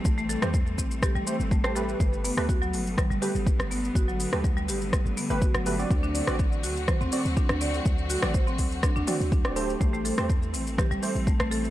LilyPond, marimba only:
\new Staff \with { instrumentName = "Marimba" } { \time 4/4 \key a \dorian \tempo 4 = 123 a16 a16 a'16 r8. c'16 r16 g'16 g16 r8 a16 a16 a'16 r16 | r8 b16 r16 fis'16 fis16 r8 g16 g16 g'16 r8. b16 r16 | fis'16 fis16 r8 g16 g16 g'16 r8. b16 r16 fis'16 fis16 r8 | d'16 d'16 d''16 r8. fis'16 r16 c''16 c'16 r8 d'16 d'16 d''16 r16 |
r8 fis'16 r16 c''16 c'16 r8 d'16 d'16 fis'16 r8 d'16 d'16 r16 | a16 a16 a'16 r8. c'16 r16 g'16 g16 r8 a16 a16 a'16 r16 | }